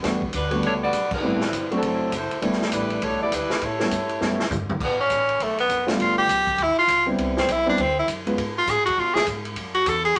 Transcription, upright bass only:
0.04 0.33 E2 medium
0.33 0.62 D2 medium
0.63 0.91 C#2 medium
0.92 1.10 B1 medium
1.11 muted upright bass stroke soft
1.22 1.51 A1 medium
1.52 1.70 G1 medium
1.71 muted upright bass stroke soft
1.82 2.11 F#1 medium
2.12 2.29 F#1 medium
2.31 muted upright bass stroke soft
2.43 2.71 G1 medium
2.72 3.01 A1 medium
3.02 3.13 B1 medium
3.11 3.21 G1 medium
3.22 3.31 E1 medium
3.32 3.49 D2 medium
3.51 muted upright bass stroke soft
3.62 3.90 A2 medium
3.91 4.20 G2 medium
4.20 4.49 F#2 medium
4.50 4.79 G2 medium
4.81 5.09 A2 medium
5.10 5.39 A1 medium
5.40 5.69 B1 medium
5.69 5.98 F#1 medium
5.99 6.27 G1 medium
6.28 6.57 B1 medium
6.58 6.75 D2 medium
6.87 7.17 C#2 medium
7.17 7.47 C2 medium
7.47 7.76 B1 medium
7.77 8.06 D2 medium
8.07 8.36 F#2 medium
8.37 8.66 G#2 medium
8.67 8.77 A2 medium
8.77 8.87 G#2 medium
8.88 8.96 F2 medium
8.97 9.26 B2 medium
9.27 9.55 G#2 medium
9.56 9.85 F#2 medium
9.86 10.14 E2 medium
10.15 10.19 C#2 medium

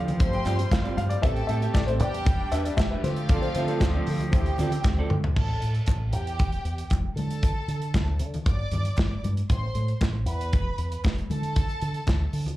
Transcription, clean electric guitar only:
0.07 muted clean electric guitar stroke soft
0.20 muted clean electric guitar stroke soft
0.32 muted clean electric guitar stroke soft
0.45 0.61 C4 medium
0.45 0.58 F4 medium
0.45 0.58 G4 loud
0.45 0.57 D5 loud
0.59 muted clean electric guitar stroke soft
0.71 muted clean electric guitar stroke soft
0.84 0.97 C4 medium
0.84 0.98 F4 medium
0.84 0.98 G4 medium
0.84 0.98 D5 medium
0.98 muted clean electric guitar stroke soft
1.12 muted clean electric guitar stroke soft
1.24 1.40 C4 medium
1.24 1.40 G4 medium
1.24 1.40 A4 medium
1.24 1.40 E5 medium
1.49 1.62 C4 medium
1.49 1.62 G4 medium
1.49 1.62 A4 medium
1.49 1.62 G5 medium
1.63 1.75 C4 medium
1.63 1.75 G4 medium
1.63 1.75 A4 medium
1.63 1.75 E5 medium
1.76 muted clean electric guitar stroke soft
1.89 2.01 C4 medium
1.89 2.00 G4 medium
1.89 2.02 A4 medium
1.89 2.01 E5 medium
2.01 muted clean electric guitar stroke soft
2.15 muted clean electric guitar stroke soft
2.28 muted clean electric guitar stroke soft
2.40 muted clean electric guitar stroke soft
2.54 2.69 D4 medium
2.54 2.66 G4 medium
2.54 2.65 B4 medium
2.54 2.65 E5 medium
2.66 muted clean electric guitar stroke soft
2.79 muted clean electric guitar stroke soft
2.92 3.04 D4 medium
2.92 3.04 G4 medium
2.92 3.04 B4 medium
2.92 3.05 E5 medium
3.04 muted clean electric guitar stroke soft
3.18 muted clean electric guitar stroke soft
3.31 3.46 C4 medium
3.31 3.46 F4 medium
3.31 3.47 A4 medium
3.31 3.47 D5 medium
3.57 3.69 C4 medium
3.57 3.69 F4 medium
3.57 3.69 A4 medium
3.57 3.69 E5 medium
3.69 3.81 C4 medium
3.69 3.82 F4 medium
3.69 3.82 A4 medium
3.69 3.81 D5 medium
3.95 4.08 C4 medium
3.95 4.08 F4 medium
3.95 4.08 A4 medium
3.95 4.09 D5 medium
4.09 muted clean electric guitar stroke soft
4.22 muted clean electric guitar stroke soft
4.34 muted clean electric guitar stroke soft
4.47 muted clean electric guitar stroke medium
4.59 4.75 C4 medium
4.59 4.73 F4 medium
4.59 4.73 A4 medium
4.59 4.72 D5 medium
4.73 muted clean electric guitar stroke soft
4.86 muted clean electric guitar stroke soft
4.99 5.10 C4 medium
4.99 5.11 F4 medium
4.99 5.11 A4 medium
4.99 5.11 D5 medium
5.12 muted clean electric guitar stroke soft
5.24 muted clean electric guitar stroke medium

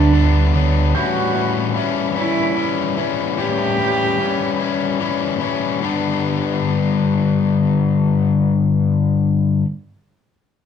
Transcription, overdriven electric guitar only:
0.00 0.12 D3 medium
0.00 0.13 G3 medium
0.00 0.13 B3 medium
0.00 0.13 D4 medium
0.13 0.92 D3 medium
0.13 0.55 G3 medium
0.13 0.53 B3 medium
0.13 0.52 D4 medium
0.53 0.95 G3 medium
0.53 0.92 B3 medium
0.53 0.92 D4 medium
0.94 1.79 A2 loud
0.94 1.75 E3 loud
0.94 1.36 G3 loud
0.94 1.35 C#4 loud
0.94 1.34 E4 loud
1.34 1.76 G3 medium
1.34 1.76 C#4 medium
1.34 1.77 E4 medium
1.75 2.55 E3 medium
1.75 2.17 G3 medium
1.75 2.16 C#4 loud
1.75 2.15 E4 loud
2.16 2.56 G3 medium
2.16 2.56 C#4 medium
2.16 2.56 E4 medium
2.56 3.37 E3 medium
2.56 2.98 G3 medium
2.56 2.97 C#4 medium
2.56 2.96 E4 medium
2.97 3.37 G3 medium
2.97 3.38 C#4 medium
2.97 3.38 E4 medium
3.37 4.19 A2 loud
3.37 4.17 E3 loud
3.37 3.79 G3 loud
3.37 3.78 C#4 loud
3.37 3.77 E4 loud
3.78 4.18 G3 medium
3.78 4.19 C#4 medium
3.78 4.19 E4 medium
4.19 4.99 E3 medium
4.19 4.60 G3 medium
4.19 4.59 C#4 medium
4.19 4.58 E4 medium
4.59 4.99 G3 medium
4.59 5.00 C#4 medium
4.59 5.00 E4 medium
5.00 5.79 E3 medium
5.00 5.41 G3 medium
5.00 5.40 C#4 medium
5.00 5.39 E4 medium
5.40 5.80 G3 medium
5.40 5.79 C#4 medium
5.40 5.79 E4 medium
5.81 9.62 G2 loud
5.81 9.63 D3 loud
5.81 9.64 G3 loud
5.81 9.65 B3 loud
5.81 9.66 D4 loud

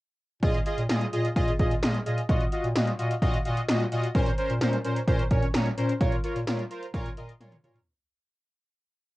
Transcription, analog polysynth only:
0.43 0.58 F4 loud
0.43 0.58 G#4 loud
0.43 0.58 D#5 loud
0.66 0.82 F4 medium
0.66 0.82 G#4 medium
0.66 0.82 D#5 medium
0.89 1.05 F4 medium
0.89 1.05 G#4 medium
0.89 1.05 D#5 medium
1.13 1.28 F4 medium
1.13 1.28 G#4 medium
1.13 1.28 D#5 medium
1.36 1.51 F4 loud
1.36 1.51 G#4 loud
1.36 1.51 D#5 loud
1.59 1.75 F4 medium
1.59 1.75 G#4 medium
1.59 1.75 D#5 medium
1.82 1.98 F4 medium
1.82 1.98 G#4 medium
1.82 1.98 D#5 loud
2.06 2.21 F4 medium
2.06 2.21 G#4 medium
2.06 2.21 D#5 loud
2.29 2.44 F4 loud
2.29 2.44 F#4 loud
2.29 2.44 D#5 loud
2.52 2.68 F4 medium
2.52 2.68 F#4 medium
2.52 2.68 D#5 medium
2.75 2.91 F4 medium
2.75 2.91 F#4 medium
2.75 2.91 D#5 medium
2.99 3.14 F4 medium
2.99 3.14 F#4 medium
2.99 3.14 D#5 loud
3.22 3.38 F4 loud
3.22 3.37 F#4 loud
3.22 3.38 D#5 loud
3.45 3.61 F4 medium
3.45 3.61 F#4 medium
3.45 3.61 D#5 loud
3.68 3.84 F4 medium
3.68 3.84 F#4 medium
3.68 3.84 D#5 medium
3.92 4.07 F4 medium
3.92 4.07 F#4 medium
3.92 4.07 D#5 loud
4.15 4.30 C#4 loud
4.15 4.30 A#4 loud
4.15 4.30 C5 loud
4.38 4.54 C#4 medium
4.38 4.54 A#4 medium
4.38 4.54 C5 loud
4.61 4.77 C#4 medium
4.61 4.77 A#4 medium
4.61 4.77 C5 medium
4.85 5.00 C#4 medium
4.85 5.00 A#4 medium
4.85 5.00 C5 medium
5.08 5.23 C#4 loud
5.08 5.24 A#4 loud
5.08 5.23 C5 loud
5.31 5.47 C#4 medium
5.31 5.47 A#4 medium
5.31 5.47 C#5 medium
5.54 5.70 C#4 medium
5.54 5.70 A#4 medium
5.54 5.70 C#5 loud
5.78 5.93 C#4 medium
5.78 5.93 A#4 medium
5.78 5.93 C5 loud
6.01 6.16 F4 loud
6.01 6.16 A#4 loud
6.01 6.16 C#5 loud
6.24 6.40 F4 medium
6.24 6.40 A#4 medium
6.24 6.40 C#5 medium
6.47 6.63 F4 medium
6.47 6.63 A#4 medium
6.47 6.63 C#5 medium
6.71 6.86 F4 medium
6.71 6.86 A#4 medium
6.71 6.86 C5 medium
6.94 7.10 F4 loud
6.94 7.10 A#4 loud
6.94 7.10 C#5 loud
7.17 7.33 F4 medium
7.17 7.33 A#4 medium
7.17 7.33 D#5 medium
7.40 7.56 F4 medium
7.40 7.56 A#4 medium
7.40 7.56 C#5 loud
7.64 7.79 F4 medium
7.64 7.79 A#4 medium
7.64 7.79 C#5 loud

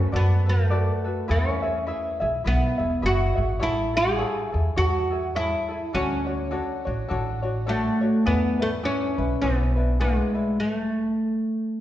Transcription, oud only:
0.00 0.16 C#4 medium
0.16 0.49 B3 medium
0.49 1.31 A3 medium
1.31 2.18 C#4 medium
2.47 3.06 B3 medium
3.06 3.62 F#4 medium
3.63 3.94 E4 medium
3.97 4.77 G#4 medium
4.78 5.36 F#4 medium
5.36 5.94 E4 medium
5.95 7.73 C#4 medium
7.69 8.26 A3 medium
8.27 8.61 B3 medium
8.62 8.68 A3 medium
8.85 9.44 C#4 medium
9.42 9.96 B3 medium
10.01 10.59 G#3 medium
10.60 11.80 A3 medium

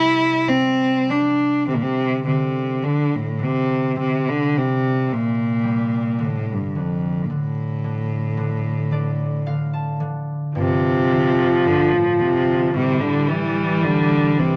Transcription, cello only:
0.00 0.50 E4 loud
0.48 1.11 C4 medium
1.10 1.67 D4 medium
1.67 1.76 C3 medium
1.75 1.84 A#2 medium
1.83 2.25 C3 medium
2.26 2.86 C3 medium
2.84 3.17 D3 medium
3.15 3.45 A2 medium
3.43 3.98 C3 medium
3.99 4.30 C3 medium
4.29 4.59 D3 medium
4.58 5.14 C3 medium
5.13 6.26 A#2 medium
6.25 6.54 A2 medium
6.52 6.80 G2 medium
6.78 7.27 F2 medium
7.25 7.33 A#2 soft
7.32 10.02 A2 medium
10.59 11.68 C3 medium
11.67 11.94 D3 medium
11.93 12.23 A2 medium
12.21 12.74 C3 medium
12.74 13.02 C3 medium
13.01 13.30 D3 medium
13.28 13.85 E3 medium
13.84 14.40 D3 medium
14.38 14.56 C3 medium

